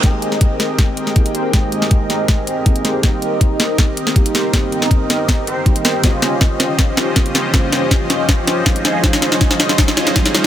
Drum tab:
HH |x-x-x-x-x-x-xxx-|x-x-x-x-x-x-xxx-|x-x-x-x-x-x-xxx-|x-x-x-x-x-x-xxx-|
SD |o--o--o-o--o----|o--o--o-o-----o-|o-----o-o--o--o-|o--o--o-o-----o-|
BD |o---o---o---o---|o---o---o---o---|o---o---o---o---|o---o---o---o---|

HH |x-x-x-x-x-x-xxx-|x-x-x-x-x-x-xxx-|x-x-x-x-x-x-xxx-|
SD |o-o-o-o-o-o-o-o-|o-o-o-o-o-o-o-o-|ooooooooooooooo-|
BD |o---o---o---o---|o---o---o---o---|o---o---o---o---|